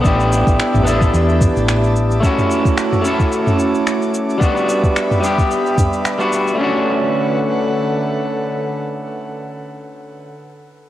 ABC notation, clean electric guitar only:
X:1
M:4/4
L:1/16
Q:"Swing 16ths" 1/4=110
K:Bm
V:1 name="Clean electric guitar"
[B,DEG]6 [B,DEA]8- [B,DEA]2 | [A,CEF]6 [A,CEA]8- [A,CEA]2 | [G,B,DF]6 [G,B,DG]6- [G,B,DG] [G,B,DF]3 | [A,CDF]16- |
[A,CDF]16 |]